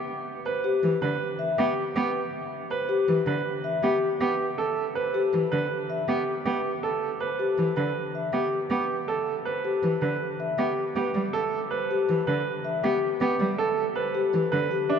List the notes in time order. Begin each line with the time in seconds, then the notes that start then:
0.45 B4 C5
0.64 G4
0.83 E3 B4
1.02 D3 B4
1.39 E5
1.58 B3 G4
1.96 B3 G4 B4
2.70 B4 C5
2.89 G4
3.08 E3 B4
3.26 D3 B4
3.64 E5
3.83 B3 G4
4.21 B3 G4 B4
4.58 A4
4.95 B4 C5
5.14 G4
5.33 E3 B4
5.52 D3 B4
5.90 E5
6.08 B3 G4
6.45 B3 G4 B4
6.83 A4
7.20 B4 C5
7.39 G4
7.58 E3 B4
7.77 D3 B4
8.15 E5
8.33 B3 G4
8.70 B3 G4 B4
9.08 A4
9.45 B4 C5
9.64 G4
9.83 E3 B4
10.02 D3 B4
10.40 E5
10.58 B3 G4
10.96 B3 G4 B4
11.15 G3
11.33 A4
11.71 B4 C5
11.91 G4
12.09 E3 B4
12.27 D3 B4
12.65 E5
12.83 B3 G4
13.20 B3 G4 B4
13.40 G3
13.58 A4
13.95 B4 C5
14.15 G4
14.34 E3 B4
14.52 D3 B4
14.71 G4
14.89 D4 E5